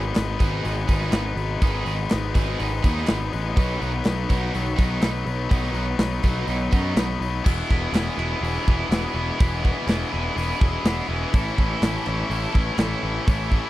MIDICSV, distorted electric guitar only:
0, 0, Header, 1, 2, 480
1, 0, Start_track
1, 0, Key_signature, 4, "major"
1, 0, Tempo, 485437
1, 1600, Time_signature, 4, 2, 24, 8
1, 13545, End_track
2, 0, Start_track
2, 0, Title_t, "Distorted electric guitar"
2, 0, Program_c, 0, 30
2, 391, Note_on_c, 0, 68, 92
2, 393, Note_on_c, 0, 63, 81
2, 403, Note_on_c, 0, 59, 65
2, 706, Note_off_c, 0, 68, 0
2, 707, Note_off_c, 0, 63, 0
2, 712, Note_off_c, 0, 59, 0
2, 870, Note_on_c, 0, 68, 90
2, 875, Note_on_c, 0, 63, 85
2, 880, Note_on_c, 0, 59, 73
2, 1187, Note_off_c, 0, 68, 0
2, 1189, Note_off_c, 0, 63, 0
2, 1192, Note_off_c, 0, 59, 0
2, 1600, Note_on_c, 0, 59, 80
2, 1602, Note_on_c, 0, 63, 84
2, 1607, Note_on_c, 0, 68, 98
2, 1914, Note_off_c, 0, 59, 0
2, 1915, Note_off_c, 0, 63, 0
2, 1917, Note_off_c, 0, 68, 0
2, 2320, Note_on_c, 0, 68, 91
2, 2328, Note_on_c, 0, 63, 81
2, 2332, Note_on_c, 0, 59, 82
2, 2635, Note_off_c, 0, 68, 0
2, 2639, Note_off_c, 0, 63, 0
2, 2641, Note_off_c, 0, 59, 0
2, 2796, Note_on_c, 0, 68, 83
2, 2806, Note_on_c, 0, 63, 79
2, 2808, Note_on_c, 0, 59, 76
2, 3114, Note_off_c, 0, 68, 0
2, 3119, Note_off_c, 0, 63, 0
2, 3120, Note_off_c, 0, 59, 0
2, 3522, Note_on_c, 0, 54, 77
2, 3534, Note_on_c, 0, 59, 81
2, 3536, Note_on_c, 0, 63, 87
2, 3838, Note_off_c, 0, 54, 0
2, 3843, Note_off_c, 0, 59, 0
2, 3844, Note_off_c, 0, 63, 0
2, 4246, Note_on_c, 0, 63, 96
2, 4256, Note_on_c, 0, 54, 79
2, 4259, Note_on_c, 0, 59, 82
2, 4560, Note_off_c, 0, 63, 0
2, 4565, Note_off_c, 0, 54, 0
2, 4567, Note_off_c, 0, 59, 0
2, 4713, Note_on_c, 0, 63, 91
2, 4717, Note_on_c, 0, 59, 81
2, 4729, Note_on_c, 0, 54, 72
2, 5034, Note_off_c, 0, 63, 0
2, 5036, Note_off_c, 0, 59, 0
2, 5042, Note_off_c, 0, 54, 0
2, 5434, Note_on_c, 0, 54, 77
2, 5444, Note_on_c, 0, 59, 92
2, 5451, Note_on_c, 0, 63, 94
2, 5755, Note_off_c, 0, 54, 0
2, 5759, Note_off_c, 0, 59, 0
2, 5763, Note_off_c, 0, 63, 0
2, 6169, Note_on_c, 0, 59, 89
2, 6172, Note_on_c, 0, 63, 94
2, 6182, Note_on_c, 0, 54, 79
2, 6482, Note_off_c, 0, 59, 0
2, 6483, Note_off_c, 0, 63, 0
2, 6489, Note_off_c, 0, 54, 0
2, 6638, Note_on_c, 0, 63, 84
2, 6647, Note_on_c, 0, 59, 75
2, 6650, Note_on_c, 0, 54, 74
2, 6956, Note_off_c, 0, 63, 0
2, 6961, Note_off_c, 0, 59, 0
2, 6962, Note_off_c, 0, 54, 0
2, 7364, Note_on_c, 0, 59, 95
2, 7368, Note_on_c, 0, 64, 92
2, 7379, Note_on_c, 0, 68, 97
2, 7613, Note_off_c, 0, 68, 0
2, 7614, Note_off_c, 0, 59, 0
2, 7615, Note_off_c, 0, 64, 0
2, 7617, Note_on_c, 0, 68, 92
2, 7618, Note_on_c, 0, 59, 74
2, 7619, Note_on_c, 0, 64, 74
2, 7855, Note_off_c, 0, 59, 0
2, 7859, Note_on_c, 0, 59, 75
2, 7862, Note_off_c, 0, 64, 0
2, 7866, Note_off_c, 0, 68, 0
2, 7866, Note_on_c, 0, 64, 78
2, 7870, Note_on_c, 0, 68, 94
2, 8096, Note_off_c, 0, 59, 0
2, 8097, Note_off_c, 0, 64, 0
2, 8099, Note_off_c, 0, 68, 0
2, 8100, Note_on_c, 0, 59, 85
2, 8101, Note_on_c, 0, 64, 94
2, 8103, Note_on_c, 0, 68, 94
2, 8326, Note_off_c, 0, 68, 0
2, 8327, Note_off_c, 0, 59, 0
2, 8338, Note_on_c, 0, 68, 109
2, 8339, Note_on_c, 0, 59, 98
2, 8340, Note_off_c, 0, 64, 0
2, 8344, Note_on_c, 0, 64, 102
2, 8561, Note_off_c, 0, 59, 0
2, 8567, Note_off_c, 0, 68, 0
2, 8573, Note_on_c, 0, 59, 80
2, 8579, Note_off_c, 0, 64, 0
2, 8579, Note_on_c, 0, 68, 93
2, 8582, Note_on_c, 0, 64, 90
2, 8801, Note_off_c, 0, 59, 0
2, 8805, Note_off_c, 0, 64, 0
2, 8805, Note_off_c, 0, 68, 0
2, 8809, Note_on_c, 0, 64, 83
2, 8813, Note_on_c, 0, 59, 72
2, 8817, Note_on_c, 0, 68, 86
2, 9034, Note_off_c, 0, 59, 0
2, 9046, Note_on_c, 0, 59, 86
2, 9047, Note_off_c, 0, 68, 0
2, 9057, Note_off_c, 0, 64, 0
2, 9059, Note_on_c, 0, 68, 101
2, 9061, Note_on_c, 0, 64, 83
2, 9273, Note_off_c, 0, 59, 0
2, 9279, Note_off_c, 0, 68, 0
2, 9285, Note_on_c, 0, 59, 95
2, 9290, Note_on_c, 0, 68, 95
2, 9292, Note_off_c, 0, 64, 0
2, 9296, Note_on_c, 0, 64, 91
2, 9507, Note_off_c, 0, 59, 0
2, 9519, Note_on_c, 0, 59, 85
2, 9520, Note_off_c, 0, 64, 0
2, 9520, Note_off_c, 0, 68, 0
2, 9524, Note_on_c, 0, 64, 92
2, 9532, Note_on_c, 0, 68, 89
2, 9746, Note_off_c, 0, 59, 0
2, 9751, Note_off_c, 0, 68, 0
2, 9757, Note_off_c, 0, 64, 0
2, 9758, Note_on_c, 0, 59, 77
2, 9761, Note_on_c, 0, 64, 82
2, 9763, Note_on_c, 0, 68, 97
2, 9982, Note_off_c, 0, 59, 0
2, 9989, Note_off_c, 0, 68, 0
2, 9991, Note_off_c, 0, 64, 0
2, 9994, Note_on_c, 0, 59, 78
2, 9995, Note_on_c, 0, 64, 92
2, 10000, Note_on_c, 0, 68, 90
2, 10229, Note_off_c, 0, 59, 0
2, 10234, Note_off_c, 0, 68, 0
2, 10240, Note_off_c, 0, 64, 0
2, 10241, Note_on_c, 0, 59, 93
2, 10244, Note_on_c, 0, 64, 91
2, 10246, Note_on_c, 0, 68, 102
2, 10470, Note_off_c, 0, 59, 0
2, 10477, Note_off_c, 0, 68, 0
2, 10480, Note_off_c, 0, 64, 0
2, 10482, Note_on_c, 0, 59, 84
2, 10484, Note_on_c, 0, 64, 84
2, 10489, Note_on_c, 0, 68, 88
2, 10704, Note_off_c, 0, 59, 0
2, 10712, Note_off_c, 0, 68, 0
2, 10714, Note_off_c, 0, 64, 0
2, 10716, Note_on_c, 0, 59, 86
2, 10718, Note_on_c, 0, 64, 94
2, 10724, Note_on_c, 0, 68, 85
2, 10943, Note_off_c, 0, 59, 0
2, 10944, Note_off_c, 0, 68, 0
2, 10950, Note_off_c, 0, 64, 0
2, 10954, Note_on_c, 0, 64, 90
2, 10955, Note_on_c, 0, 59, 80
2, 10956, Note_on_c, 0, 68, 84
2, 11183, Note_off_c, 0, 59, 0
2, 11184, Note_off_c, 0, 68, 0
2, 11201, Note_off_c, 0, 64, 0
2, 11202, Note_on_c, 0, 61, 99
2, 11205, Note_on_c, 0, 64, 96
2, 11212, Note_on_c, 0, 69, 103
2, 11446, Note_off_c, 0, 61, 0
2, 11448, Note_off_c, 0, 64, 0
2, 11450, Note_on_c, 0, 61, 85
2, 11451, Note_off_c, 0, 69, 0
2, 11452, Note_on_c, 0, 64, 80
2, 11455, Note_on_c, 0, 69, 93
2, 11684, Note_off_c, 0, 61, 0
2, 11688, Note_on_c, 0, 61, 75
2, 11692, Note_off_c, 0, 69, 0
2, 11694, Note_off_c, 0, 64, 0
2, 11696, Note_on_c, 0, 69, 84
2, 11698, Note_on_c, 0, 64, 81
2, 11927, Note_off_c, 0, 61, 0
2, 11931, Note_on_c, 0, 61, 85
2, 11938, Note_off_c, 0, 64, 0
2, 11941, Note_off_c, 0, 69, 0
2, 11942, Note_on_c, 0, 64, 91
2, 11945, Note_on_c, 0, 69, 89
2, 12164, Note_off_c, 0, 61, 0
2, 12168, Note_off_c, 0, 69, 0
2, 12172, Note_off_c, 0, 64, 0
2, 12175, Note_on_c, 0, 61, 86
2, 12176, Note_on_c, 0, 64, 98
2, 12180, Note_on_c, 0, 69, 100
2, 12397, Note_off_c, 0, 61, 0
2, 12402, Note_off_c, 0, 69, 0
2, 12408, Note_off_c, 0, 64, 0
2, 12408, Note_on_c, 0, 61, 83
2, 12412, Note_on_c, 0, 64, 87
2, 12413, Note_on_c, 0, 69, 94
2, 12633, Note_off_c, 0, 61, 0
2, 12644, Note_off_c, 0, 64, 0
2, 12645, Note_off_c, 0, 69, 0
2, 12645, Note_on_c, 0, 61, 75
2, 12648, Note_on_c, 0, 64, 88
2, 12657, Note_on_c, 0, 69, 83
2, 12879, Note_off_c, 0, 61, 0
2, 12890, Note_off_c, 0, 69, 0
2, 12891, Note_on_c, 0, 61, 80
2, 12893, Note_off_c, 0, 64, 0
2, 12897, Note_on_c, 0, 64, 93
2, 12902, Note_on_c, 0, 69, 91
2, 13119, Note_off_c, 0, 69, 0
2, 13120, Note_off_c, 0, 61, 0
2, 13126, Note_off_c, 0, 64, 0
2, 13130, Note_on_c, 0, 64, 107
2, 13131, Note_on_c, 0, 69, 103
2, 13132, Note_on_c, 0, 61, 98
2, 13353, Note_off_c, 0, 61, 0
2, 13361, Note_off_c, 0, 69, 0
2, 13365, Note_on_c, 0, 61, 83
2, 13368, Note_off_c, 0, 64, 0
2, 13372, Note_on_c, 0, 64, 86
2, 13373, Note_on_c, 0, 69, 92
2, 13545, Note_off_c, 0, 61, 0
2, 13545, Note_off_c, 0, 64, 0
2, 13545, Note_off_c, 0, 69, 0
2, 13545, End_track
0, 0, End_of_file